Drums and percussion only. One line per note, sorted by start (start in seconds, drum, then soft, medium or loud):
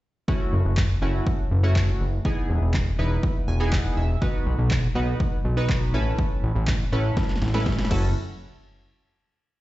0.28 kick loud
0.77 kick loud
0.77 clap loud
1.27 kick loud
1.76 kick loud
1.76 clap loud
2.25 kick loud
2.74 kick loud
2.74 clap loud
3.23 kick loud
3.72 kick loud
3.72 clap loud
4.22 kick loud
4.71 kick loud
4.71 clap loud
5.20 kick loud
5.69 kick loud
5.69 clap loud
6.18 kick loud
6.67 kick loud
6.67 clap loud
7.17 kick loud
7.17 snare medium
7.23 snare soft
7.29 snare medium
7.36 snare medium
7.42 snare medium
7.48 snare medium
7.54 snare medium
7.60 snare medium
7.66 kick loud
7.66 snare medium
7.72 snare medium
7.78 snare medium
7.85 snare medium
7.91 kick loud
7.91 crash medium